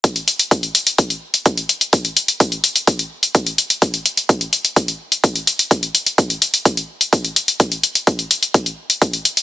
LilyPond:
\new DrumStaff \with { instrumentName = "Drums" } \drummode { \time 4/4 \tempo 4 = 127 <hh bd>16 hh16 hh16 hh16 <hh bd>16 hh16 hh16 hh16 <hh bd>16 hh8 hh16 <hh bd>16 hh16 hh16 hh16 | <hh bd>16 hh16 hh16 hh16 <hh bd>16 hh16 hh16 hh16 <hh bd>16 hh8 hh16 <hh bd>16 hh16 hh16 hh16 | <hh bd>16 hh16 hh16 hh16 <hh bd>16 hh16 hh16 hh16 <hh bd>16 hh8 hh16 <hh bd>16 hh16 hh16 hh16 | <hh bd>16 hh16 hh16 hh16 <hh bd>16 hh16 hh16 hh16 <hh bd>16 hh8 hh16 <hh bd>16 hh16 hh16 hh16 |
<hh bd>16 hh16 hh16 hh16 <hh bd>16 hh16 hh16 hh16 <hh bd>16 hh8 hh16 <hh bd>16 hh16 hh16 hh16 | }